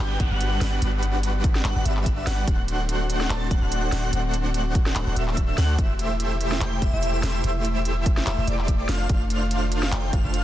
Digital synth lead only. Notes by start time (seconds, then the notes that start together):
0.00 G5
0.20 F#5
0.31 F#5
0.61 F#5
0.82 F#5
1.65 F#5
1.76 F#5
1.86 E5
2.27 F#5
2.48 F#5
3.30 A5
3.51 F#5
3.62 F#5
3.92 F#5
4.13 F#5
4.96 F#5
5.07 F#5
5.17 E5
5.58 F#5
5.79 E5
6.61 G5
6.82 E5
6.93 E5
7.23 E5
7.44 E5
8.27 E5
8.38 E5
8.48 D5
8.89 F5
9.10 F5
9.92 G5
10.13 F5
10.24 F5